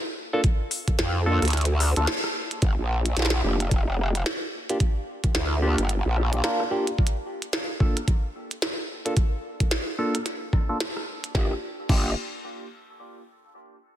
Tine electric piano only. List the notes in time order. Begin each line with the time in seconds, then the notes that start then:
0.33 A#3 D4 F4 A4
1.26 A#3 D4 F4 A4
1.97 A#3 D4 F4 A4
3.44 A#3 D4 F4 G4
4.70 A#3 D4 F4 G4
5.62 A#3 D4 F4 G4
6.33 A#3 D4 F4 G4
6.44 A#3 D4 F4 A#4
6.71 A#3 D4 F4 G4
7.80 A#3 D4 F4 A4
9.05 A#3 D4 F4 A4
9.98 A#3 D4 F4 A4
10.69 A#3 D4 F4 A4
11.35 A#3 D4 F4 G4
11.89 A#3 D4 F4 G4